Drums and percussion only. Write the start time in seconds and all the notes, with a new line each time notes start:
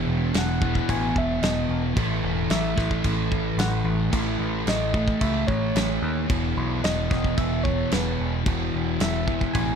0.34 snare, crash
0.62 kick
0.75 kick
0.89 kick, crash
1.16 kick
1.43 snare, crash
1.97 kick, crash
2.50 snare, crash
2.78 kick, snare
2.91 kick
3.04 kick, crash
3.32 kick
3.59 snare, crash
4.13 kick, crash
4.67 snare, crash
4.94 kick
5.08 kick
5.21 kick, crash
5.48 kick
5.76 snare, crash
6.30 kick, crash
6.84 snare, crash
7.11 kick, snare
7.24 kick
7.37 kick, crash
7.65 kick
7.92 snare, crash
8.46 kick, crash
9.00 snare, crash
9.28 kick
9.41 kick
9.55 kick, crash